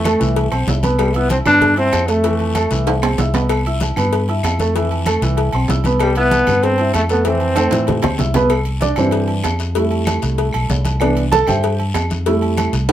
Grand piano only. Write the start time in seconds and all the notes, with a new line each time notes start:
0.05 A3 A4 A5
0.20 E3 E4 E5
0.51 C4 C5 C6
0.68 E4 E5 E6
0.83 B3 B4 B5
1.16 E4 E5 E6
1.46 B3 B4 B5
1.77 E4 E5 E6
2.08 A3 A4 A5
2.25 E3 E4 E5
2.56 A3 A4 A5
2.71 E3 E4 E5
3.03 C4 C5 C6
3.19 E4 E5 E6
3.34 B3 B4 B5
3.66 E4 E5 E6
3.98 B3 B4 B5
4.29 E4 E5 E6
4.60 A3 A4 A5
4.76 E3 E4 E5
5.07 A3 A4 A5
5.22 E3 E4 E5
5.54 C4 C5 C6
5.69 E4 E5 E6
5.86 B3 B4 B5
6.17 E4 E5 E6
6.49 B3 B4 B5
6.79 E4 E5 E6
7.10 A3 A4 A5
7.26 E3 E4 E5
7.57 A3 A4 A5
7.72 E3 E4 E5
8.03 C4 C5 C6
8.19 E4 E5 E6
8.35 B3 B4 B5
8.82 D4 D5
8.98 E3 C4 D4 E4 G4 B4 C5
9.76 G3 A3 E4
11.00 E3 B3 D4
11.32 A4 A5
11.48 G4 C5 E5 G5
12.27 G3 A3 E4